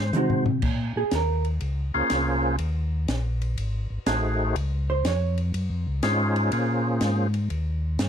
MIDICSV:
0, 0, Header, 1, 5, 480
1, 0, Start_track
1, 0, Key_signature, -5, "minor"
1, 0, Tempo, 491400
1, 611, Time_signature, 4, 2, 24, 8
1, 7900, End_track
2, 0, Start_track
2, 0, Title_t, "Hollow-body jazz guitar"
2, 0, Program_c, 0, 26
2, 152, Note_on_c, 0, 56, 55
2, 158, Note_on_c, 0, 63, 57
2, 167, Note_on_c, 0, 66, 66
2, 167, Note_on_c, 0, 72, 57
2, 429, Note_off_c, 0, 56, 0
2, 431, Note_off_c, 0, 63, 0
2, 436, Note_off_c, 0, 66, 0
2, 436, Note_off_c, 0, 72, 0
2, 950, Note_on_c, 0, 68, 77
2, 1097, Note_off_c, 0, 68, 0
2, 1126, Note_on_c, 0, 70, 64
2, 1418, Note_off_c, 0, 70, 0
2, 4784, Note_on_c, 0, 72, 88
2, 4934, Note_off_c, 0, 72, 0
2, 4959, Note_on_c, 0, 73, 84
2, 5254, Note_off_c, 0, 73, 0
2, 7900, End_track
3, 0, Start_track
3, 0, Title_t, "Tonewheel organ"
3, 0, Program_c, 1, 16
3, 0, Note_on_c, 1, 72, 84
3, 432, Note_off_c, 1, 72, 0
3, 1897, Note_on_c, 1, 58, 65
3, 1898, Note_on_c, 1, 61, 58
3, 1898, Note_on_c, 1, 65, 58
3, 1899, Note_on_c, 1, 68, 58
3, 1900, Note_on_c, 1, 72, 73
3, 2502, Note_off_c, 1, 58, 0
3, 2503, Note_off_c, 1, 61, 0
3, 2503, Note_off_c, 1, 65, 0
3, 2503, Note_off_c, 1, 68, 0
3, 2504, Note_off_c, 1, 72, 0
3, 3970, Note_on_c, 1, 57, 56
3, 3971, Note_on_c, 1, 63, 49
3, 3972, Note_on_c, 1, 68, 52
3, 3975, Note_on_c, 1, 66, 50
3, 3979, Note_on_c, 1, 72, 63
3, 4450, Note_off_c, 1, 57, 0
3, 4451, Note_off_c, 1, 63, 0
3, 4451, Note_off_c, 1, 68, 0
3, 4453, Note_off_c, 1, 66, 0
3, 4455, Note_off_c, 1, 72, 0
3, 5889, Note_on_c, 1, 63, 53
3, 5892, Note_on_c, 1, 61, 55
3, 5893, Note_on_c, 1, 68, 48
3, 5898, Note_on_c, 1, 65, 51
3, 5898, Note_on_c, 1, 72, 61
3, 6364, Note_off_c, 1, 61, 0
3, 6364, Note_off_c, 1, 68, 0
3, 6365, Note_off_c, 1, 72, 0
3, 6366, Note_off_c, 1, 65, 0
3, 6370, Note_off_c, 1, 63, 0
3, 6372, Note_on_c, 1, 58, 64
3, 6376, Note_on_c, 1, 61, 53
3, 6376, Note_on_c, 1, 68, 61
3, 6377, Note_on_c, 1, 65, 61
3, 6377, Note_on_c, 1, 72, 71
3, 7106, Note_off_c, 1, 58, 0
3, 7107, Note_off_c, 1, 61, 0
3, 7107, Note_off_c, 1, 68, 0
3, 7108, Note_off_c, 1, 65, 0
3, 7108, Note_off_c, 1, 72, 0
3, 7900, End_track
4, 0, Start_track
4, 0, Title_t, "Tonewheel organ"
4, 0, Program_c, 2, 16
4, 0, Note_on_c, 2, 44, 73
4, 121, Note_off_c, 2, 44, 0
4, 138, Note_on_c, 2, 48, 88
4, 600, Note_off_c, 2, 48, 0
4, 614, Note_on_c, 2, 46, 76
4, 909, Note_off_c, 2, 46, 0
4, 938, Note_on_c, 2, 46, 36
4, 1017, Note_off_c, 2, 46, 0
4, 1097, Note_on_c, 2, 39, 92
4, 1560, Note_off_c, 2, 39, 0
4, 1579, Note_on_c, 2, 37, 70
4, 1871, Note_off_c, 2, 37, 0
4, 1903, Note_on_c, 2, 37, 33
4, 1980, Note_off_c, 2, 37, 0
4, 2058, Note_on_c, 2, 36, 72
4, 2520, Note_off_c, 2, 36, 0
4, 2531, Note_on_c, 2, 39, 77
4, 2996, Note_off_c, 2, 39, 0
4, 3012, Note_on_c, 2, 34, 85
4, 3477, Note_off_c, 2, 34, 0
4, 3493, Note_on_c, 2, 32, 77
4, 3788, Note_off_c, 2, 32, 0
4, 3813, Note_on_c, 2, 32, 35
4, 3893, Note_off_c, 2, 32, 0
4, 3973, Note_on_c, 2, 33, 82
4, 4437, Note_off_c, 2, 33, 0
4, 4454, Note_on_c, 2, 37, 81
4, 4918, Note_off_c, 2, 37, 0
4, 4924, Note_on_c, 2, 41, 88
4, 5393, Note_off_c, 2, 41, 0
4, 5413, Note_on_c, 2, 42, 83
4, 5567, Note_off_c, 2, 42, 0
4, 5567, Note_on_c, 2, 41, 53
4, 5729, Note_off_c, 2, 41, 0
4, 5735, Note_on_c, 2, 37, 66
4, 5882, Note_off_c, 2, 37, 0
4, 5892, Note_on_c, 2, 44, 83
4, 6357, Note_off_c, 2, 44, 0
4, 6376, Note_on_c, 2, 46, 82
4, 6839, Note_off_c, 2, 46, 0
4, 6850, Note_on_c, 2, 44, 87
4, 7316, Note_off_c, 2, 44, 0
4, 7329, Note_on_c, 2, 39, 72
4, 7795, Note_off_c, 2, 39, 0
4, 7810, Note_on_c, 2, 43, 77
4, 7900, Note_off_c, 2, 43, 0
4, 7900, End_track
5, 0, Start_track
5, 0, Title_t, "Drums"
5, 127, Note_on_c, 9, 44, 51
5, 130, Note_on_c, 9, 47, 65
5, 224, Note_off_c, 9, 44, 0
5, 227, Note_off_c, 9, 47, 0
5, 290, Note_on_c, 9, 43, 62
5, 388, Note_off_c, 9, 43, 0
5, 446, Note_on_c, 9, 43, 79
5, 544, Note_off_c, 9, 43, 0
5, 606, Note_on_c, 9, 49, 69
5, 613, Note_on_c, 9, 36, 63
5, 704, Note_off_c, 9, 49, 0
5, 711, Note_off_c, 9, 36, 0
5, 1087, Note_on_c, 9, 44, 58
5, 1087, Note_on_c, 9, 51, 57
5, 1090, Note_on_c, 9, 38, 59
5, 1185, Note_off_c, 9, 44, 0
5, 1185, Note_off_c, 9, 51, 0
5, 1188, Note_off_c, 9, 38, 0
5, 1412, Note_on_c, 9, 51, 38
5, 1510, Note_off_c, 9, 51, 0
5, 1568, Note_on_c, 9, 51, 48
5, 1666, Note_off_c, 9, 51, 0
5, 2050, Note_on_c, 9, 44, 48
5, 2050, Note_on_c, 9, 51, 65
5, 2052, Note_on_c, 9, 38, 56
5, 2147, Note_off_c, 9, 44, 0
5, 2147, Note_off_c, 9, 51, 0
5, 2150, Note_off_c, 9, 38, 0
5, 2525, Note_on_c, 9, 51, 59
5, 2623, Note_off_c, 9, 51, 0
5, 3011, Note_on_c, 9, 44, 51
5, 3011, Note_on_c, 9, 51, 61
5, 3014, Note_on_c, 9, 38, 60
5, 3109, Note_off_c, 9, 44, 0
5, 3109, Note_off_c, 9, 51, 0
5, 3112, Note_off_c, 9, 38, 0
5, 3336, Note_on_c, 9, 51, 42
5, 3434, Note_off_c, 9, 51, 0
5, 3492, Note_on_c, 9, 51, 55
5, 3590, Note_off_c, 9, 51, 0
5, 3970, Note_on_c, 9, 44, 61
5, 3970, Note_on_c, 9, 51, 68
5, 3973, Note_on_c, 9, 38, 70
5, 4067, Note_off_c, 9, 44, 0
5, 4067, Note_off_c, 9, 51, 0
5, 4070, Note_off_c, 9, 38, 0
5, 4452, Note_on_c, 9, 51, 51
5, 4550, Note_off_c, 9, 51, 0
5, 4930, Note_on_c, 9, 44, 45
5, 4930, Note_on_c, 9, 51, 61
5, 4933, Note_on_c, 9, 38, 58
5, 5027, Note_off_c, 9, 44, 0
5, 5027, Note_off_c, 9, 51, 0
5, 5030, Note_off_c, 9, 38, 0
5, 5251, Note_on_c, 9, 51, 38
5, 5349, Note_off_c, 9, 51, 0
5, 5412, Note_on_c, 9, 51, 56
5, 5509, Note_off_c, 9, 51, 0
5, 5887, Note_on_c, 9, 44, 52
5, 5887, Note_on_c, 9, 51, 68
5, 5890, Note_on_c, 9, 38, 63
5, 5984, Note_off_c, 9, 44, 0
5, 5984, Note_off_c, 9, 51, 0
5, 5987, Note_off_c, 9, 38, 0
5, 6212, Note_on_c, 9, 51, 42
5, 6309, Note_off_c, 9, 51, 0
5, 6366, Note_on_c, 9, 51, 65
5, 6464, Note_off_c, 9, 51, 0
5, 6844, Note_on_c, 9, 44, 49
5, 6844, Note_on_c, 9, 51, 59
5, 6847, Note_on_c, 9, 38, 58
5, 6942, Note_off_c, 9, 44, 0
5, 6942, Note_off_c, 9, 51, 0
5, 6945, Note_off_c, 9, 38, 0
5, 7167, Note_on_c, 9, 51, 45
5, 7265, Note_off_c, 9, 51, 0
5, 7326, Note_on_c, 9, 51, 46
5, 7424, Note_off_c, 9, 51, 0
5, 7804, Note_on_c, 9, 44, 61
5, 7804, Note_on_c, 9, 51, 60
5, 7807, Note_on_c, 9, 38, 68
5, 7900, Note_off_c, 9, 38, 0
5, 7900, Note_off_c, 9, 44, 0
5, 7900, Note_off_c, 9, 51, 0
5, 7900, End_track
0, 0, End_of_file